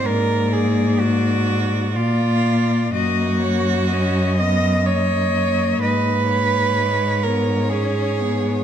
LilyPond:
<<
  \new Staff \with { instrumentName = "Cello" } { \time 3/4 \key ees \minor \tempo 4 = 63 d''2 d''4 | ees''8 des''8 ees''4 ees''4 | ees''8 des''2~ des''8 | }
  \new Staff \with { instrumentName = "Cello" } { \time 3/4 \key ees \minor bes'8 aes'8 ges'4 f'4 | ges'4. ees''8 des''4 | ces''4. bes'8 aes'4 | }
  \new Staff \with { instrumentName = "Cello" } { \time 3/4 \key ees \minor bes2 bes4 | bes4 des'8 ces'8 bes4~ | bes4 aes8 ces'8 des'8 ces'8 | }
  \new Staff \with { instrumentName = "Cello" } { \clef bass \time 3/4 \key ees \minor aes,2 bes,4 | ges,2. | aes,2. | }
>>